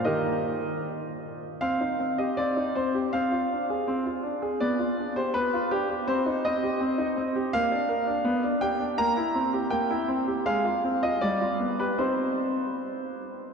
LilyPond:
\new Staff \with { instrumentName = "Grand piano" } { \time 2/4 \key ees \major \tempo 4 = 81 << { <g' bes' ees''>4 r4 | \key c \minor f''8. ees''16 d''8 c''8 | f''2 | d''8. c''16 b'8 g'8 |
c''8 ees''4. | f''4. g''8 | bes''4 g''8 r8 | f''8. ees''16 d''8. b'16 |
c''4. r8 | } \\ { <ees bes ees'>4 r4 | c'16 ees'16 c'16 g'16 c'16 ees'16 c'16 g'16 | c'16 f'16 d'16 aes'16 c'16 f'16 d'16 aes'16 | b16 f'16 d'16 g'16 b16 f'16 d'16 g'16 |
c'16 ees'16 c'16 g'16 c'16 ees'16 c'16 g'16 | bes16 d'16 bes'16 d'16 b16 d'16 g'16 d'16 | bes16 e'16 c'16 g'16 bes16 e'16 c'16 g'16 | aes16 f'16 c'16 f'16 g16 f'16 b16 g'16 |
<c' ees' g'>4 r4 | } >> }